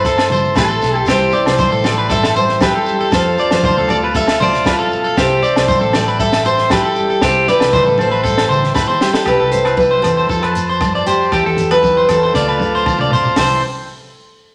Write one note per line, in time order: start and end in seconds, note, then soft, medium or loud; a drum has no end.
0.00 0.52 G1 loud
0.00 0.56 E3 medium
0.00 0.30 A3 soft
0.00 1.11 C4 medium
0.00 1.08 E4 medium
0.00 0.53 C5 medium
0.00 3.09 E5 medium
0.00 1.06 A5 medium
0.00 3.08 C6 medium
0.05 1.07 E2 medium
0.05 0.30 A4 loud
0.05 kick loud
0.05 snare soft
0.05 shekere medium
0.18 snare medium
0.18 low agogo medium
0.18 shekere soft
0.30 0.45 G3 medium
0.30 0.56 C5 medium
0.30 muted conga soft
0.30 high conga medium
0.30 low conga medium
0.30 shekere medium
0.45 0.82 A3 medium
0.55 0.79 A1 medium
0.55 1.05 E3 medium
0.55 1.05 A4 loud
0.55 0.69 B4 medium
0.55 kick loud
0.55 snare medium
0.55 high conga medium
0.55 low agogo medium
0.55 shekere loud
0.68 0.94 A4 medium
0.68 shekere soft
0.81 1.05 B1 medium
0.81 1.05 A3 medium
0.81 snare soft
0.81 shekere medium
0.95 1.07 A4 medium
0.95 shekere soft
1.06 1.30 C2 medium
1.06 1.32 G4 medium
1.06 1.45 C5 loud
1.06 3.11 G5 medium
1.06 kick medium
1.06 snare medium
1.06 low agogo medium
1.06 shekere loud
1.10 1.34 C3 medium
1.10 1.34 E3 medium
1.10 1.60 G3 medium
1.10 1.86 C4 medium
1.10 3.13 E4 medium
1.32 2.61 E3 medium
1.32 1.57 D5 medium
1.32 muted conga soft
1.32 shekere medium
1.46 1.70 C2 medium
1.46 1.86 C5 loud
1.46 snare medium
1.46 low agogo medium
1.46 shekere soft
1.58 2.36 G3 medium
1.58 1.72 C5 medium
1.58 kick loud
1.58 high conga loud
1.58 shekere loud
1.72 2.71 A1 medium
1.72 1.96 A4 medium
1.84 3.91 C4 medium
1.84 2.09 D5 loud
1.84 snare medium
1.84 muted conga soft
1.84 high conga medium
1.84 low agogo medium
1.84 shekere medium
1.98 2.09 B4 medium
2.09 3.10 G2 medium
2.09 2.34 A4 loud
2.09 2.34 E5 loud
2.09 kick loud
2.09 snare soft
2.09 shekere loud
2.23 snare medium
2.23 low agogo medium
2.23 shekere soft
2.35 2.88 G3 medium
2.35 2.60 C5 medium
2.35 2.62 C5 loud
2.35 muted conga soft
2.35 shekere medium
2.49 snare soft
2.61 3.10 E3 medium
2.61 3.09 G4 loud
2.61 2.74 B4 medium
2.61 kick loud
2.61 snare medium
2.61 high conga medium
2.61 low agogo medium
2.61 shekere loud
2.76 2.99 A4 medium
2.86 3.14 G3 medium
2.86 shekere medium
2.99 3.12 A4 medium
2.99 shekere soft
3.12 3.35 F2 loud
3.12 5.14 F2 medium
3.12 5.15 F4 medium
3.12 3.37 A4 medium
3.12 3.49 C5 loud
3.12 5.16 F5 medium
3.12 5.16 A5 medium
3.12 kick loud
3.12 snare medium
3.12 low agogo medium
3.12 shekere loud
3.38 5.14 F3 medium
3.38 3.63 D5 medium
3.38 muted conga soft
3.38 shekere medium
3.51 3.75 F2 medium
3.51 3.87 C5 loud
3.51 snare medium
3.51 low agogo medium
3.51 shekere soft
3.63 4.41 A3 medium
3.63 3.77 C5 medium
3.63 kick medium
3.63 high conga loud
3.63 low conga medium
3.63 shekere loud
3.77 4.75 D2 loud
3.77 4.02 A4 medium
3.88 5.95 C4 medium
3.88 3.97 D5 medium
3.88 muted conga soft
3.88 high conga medium
3.88 low agogo medium
3.88 shekere medium
4.04 4.15 B4 medium
4.14 4.66 C3 medium
4.14 4.39 A4 medium
4.14 4.39 E5 loud
4.14 kick medium
4.14 snare soft
4.14 shekere loud
4.28 snare medium
4.28 low agogo medium
4.28 shekere soft
4.40 5.15 A3 medium
4.40 4.65 C5 medium
4.40 4.68 D5 loud
4.40 high conga medium
4.40 low conga medium
4.40 shekere medium
4.54 snare soft
4.65 4.91 A2 medium
4.65 5.19 F4 medium
4.65 4.78 B4 medium
4.65 kick medium
4.65 snare medium
4.65 high conga medium
4.65 low agogo medium
4.65 shekere loud
4.79 5.03 A4 medium
4.91 5.17 B2 medium
4.91 shekere medium
5.04 5.16 A4 medium
5.04 shekere soft
5.17 5.41 C2 loud
5.17 5.43 C3 medium
5.17 7.23 E4 medium
5.17 5.42 G4 loud
5.17 5.56 C5 loud
5.17 9.23 E5 medium
5.17 9.24 G5 medium
5.17 kick medium
5.17 snare medium
5.17 low agogo medium
5.17 shekere loud
5.42 6.72 E3 medium
5.42 5.67 D5 medium
5.42 muted conga soft
5.42 shekere medium
5.56 5.80 C2 medium
5.56 5.95 C5 loud
5.56 snare medium
5.56 low agogo medium
5.56 shekere soft
5.68 6.98 G3 medium
5.68 5.81 C5 medium
5.68 kick loud
5.68 high conga loud
5.68 shekere loud
5.81 6.80 A1 medium
5.81 6.06 A4 medium
5.93 8.01 C4 medium
5.93 6.18 D5 loud
5.93 snare medium
5.93 muted conga soft
5.93 high conga medium
5.93 low agogo medium
5.93 shekere medium
6.08 6.19 B4 medium
6.20 7.20 G2 medium
6.20 6.44 A4 loud
6.20 6.44 E5 loud
6.20 kick medium
6.20 shekere loud
6.33 snare medium
6.33 low agogo medium
6.33 shekere soft
6.45 6.69 C5 medium
6.45 6.70 C5 medium
6.45 muted conga soft
6.45 shekere medium
6.58 snare soft
6.70 7.49 E3 medium
6.70 7.24 G4 medium
6.70 6.84 B4 medium
6.70 kick loud
6.70 snare medium
6.70 high conga medium
6.70 low agogo medium
6.70 shekere loud
6.85 7.09 A4 medium
6.95 7.74 G3 medium
6.95 shekere medium
7.10 7.22 A4 medium
7.10 shekere soft
7.21 7.45 C2 medium
7.21 7.48 C3 medium
7.21 9.27 E4 medium
7.21 7.46 G4 loud
7.21 7.47 C5 medium
7.21 kick loud
7.21 snare medium
7.21 low agogo medium
7.21 shekere loud
7.36 shekere soft
7.47 8.75 E3 medium
7.47 7.96 B4 medium
7.47 7.72 D5 medium
7.47 snare soft
7.47 muted conga soft
7.47 shekere medium
7.60 7.85 C2 medium
7.60 snare medium
7.60 low agogo medium
7.73 8.51 G3 medium
7.73 7.86 C5 medium
7.73 kick loud
7.73 high conga loud
7.73 low conga medium
7.73 shekere loud
7.86 8.85 A1 loud
7.86 8.11 A4 medium
7.86 shekere soft
7.98 9.25 C4 medium
7.98 8.73 C5 medium
7.98 muted conga soft
7.98 high conga medium
7.98 low agogo medium
7.98 shekere medium
8.12 8.23 B4 medium
8.12 shekere soft
8.24 9.25 G2 medium
8.24 8.48 A4 loud
8.24 kick medium
8.24 snare soft
8.24 shekere loud
8.38 snare medium
8.38 low agogo medium
8.38 shekere soft
8.49 9.00 G3 medium
8.49 8.74 C5 medium
8.49 muted conga soft
8.49 low conga medium
8.49 shekere medium
8.64 snare soft
8.64 shekere soft
8.75 9.24 E3 medium
8.75 8.87 B4 medium
8.75 kick loud
8.75 snare medium
8.75 high conga medium
8.75 low agogo medium
8.75 shekere loud
8.88 9.13 C5 medium
8.88 mid tom medium
8.88 shekere soft
9.01 11.32 G3 medium
9.01 9.28 G4 medium
9.01 snare medium
9.01 shekere medium
9.13 9.26 A4 medium
9.13 snare medium
9.18 shekere soft
9.25 9.39 C2 medium
9.25 10.27 C3 medium
9.25 9.79 E4 medium
9.25 9.39 G4 medium
9.25 9.51 B4 medium
9.25 10.29 E5 medium
9.25 10.29 G5 medium
9.25 kick medium
9.25 cross-stick medium
9.25 muted conga soft
9.25 low agogo medium
9.25 shekere medium
9.40 10.00 C2 medium
9.40 9.64 A4 medium
9.52 10.03 C4 medium
9.52 9.77 C5 medium
9.52 closed hi-hat medium
9.52 shekere medium
9.65 9.90 B4 medium
9.65 cross-stick medium
9.65 low agogo medium
9.65 shekere soft
9.77 10.30 E4 medium
9.77 10.01 B4 medium
9.77 kick medium
9.77 high conga medium
9.77 shekere medium
9.91 10.16 C5 medium
10.02 10.27 E2 medium
10.02 10.27 C4 medium
10.02 10.51 A4 medium
10.02 cross-stick medium
10.02 closed hi-hat medium
10.02 low agogo medium
10.02 shekere medium
10.17 10.29 C5 medium
10.17 shekere soft
10.29 10.80 F2 medium
10.29 11.28 F2 loud
10.29 11.29 F4 medium
10.29 10.42 A4 medium
10.29 11.32 C5 medium
10.29 11.32 A5 medium
10.29 kick medium
10.29 muted conga soft
10.29 high conga medium
10.29 shekere medium
10.43 10.68 B4 medium
10.43 cross-stick medium
10.43 low agogo medium
10.55 11.29 C4 medium
10.55 closed hi-hat soft
10.55 muted conga soft
10.55 shekere loud
10.69 10.93 C5 medium
10.69 shekere soft
10.80 11.06 G2 medium
10.80 kick loud
10.80 cross-stick medium
10.80 high conga medium
10.80 low agogo medium
10.80 shekere medium
10.95 11.06 D5 medium
11.06 11.32 F2 medium
11.06 11.73 G4 medium
11.06 11.32 C5 medium
11.06 closed hi-hat soft
11.06 muted conga soft
11.06 shekere medium
11.22 shekere soft
11.31 11.44 E2 loud
11.31 12.35 E2 medium
11.31 11.83 E4 medium
11.31 11.45 G4 medium
11.31 12.34 E5 medium
11.31 12.34 G5 medium
11.31 kick medium
11.31 cross-stick medium
11.31 muted conga soft
11.31 low agogo medium
11.31 shekere medium
11.46 12.05 E2 loud
11.46 11.70 A4 medium
11.57 12.10 C4 medium
11.57 closed hi-hat medium
11.57 high conga medium
11.57 shekere loud
11.71 12.06 B4 loud
11.71 11.95 B4 medium
11.71 cross-stick medium
11.71 low agogo medium
11.71 shekere soft
11.83 12.35 E4 medium
11.83 kick medium
11.83 high conga medium
11.83 shekere medium
11.97 12.21 C5 medium
12.09 12.33 E2 medium
12.09 12.33 C4 medium
12.09 12.83 A4 medium
12.09 cross-stick medium
12.09 closed hi-hat soft
12.09 low agogo medium
12.09 shekere loud
12.23 12.34 C5 medium
12.23 shekere soft
12.34 13.33 D2 medium
12.34 13.37 D3 medium
12.34 13.35 A3 medium
12.34 13.35 D4 medium
12.34 12.62 F4 medium
12.34 12.47 D5 medium
12.34 13.37 F5 medium
12.34 13.37 A5 medium
12.34 13.37 D6 medium
12.34 kick medium
12.34 snare medium
12.34 muted conga soft
12.34 low conga medium
12.34 shekere medium
12.48 12.73 B4 medium
12.48 low agogo medium
12.60 12.87 F4 medium
12.60 high tom medium
12.60 muted conga soft
12.60 shekere loud
12.75 12.99 C5 medium
12.75 shekere soft
12.86 13.13 F4 medium
12.86 kick loud
12.86 mid tom medium
12.86 high conga medium
12.86 low agogo medium
12.86 shekere medium
12.98 13.12 D5 medium
12.98 mid tom medium
13.10 13.37 C5 medium
13.10 floor tom medium
13.10 muted conga soft
13.10 shekere medium
13.15 13.36 F4 medium
13.24 floor tom medium
13.24 shekere soft
13.36 13.61 C2 medium
13.36 13.62 C3 medium
13.36 13.62 C5 medium
13.36 13.62 E5 medium
13.36 13.62 G5 medium
13.36 kick medium
13.36 snare medium
13.36 open hi-hat medium
13.36 muted conga medium
13.36 low agogo medium
13.36 shekere medium
13.41 13.62 E3 medium
13.41 13.62 G3 medium
13.41 13.63 C4 medium
13.41 13.63 E4 medium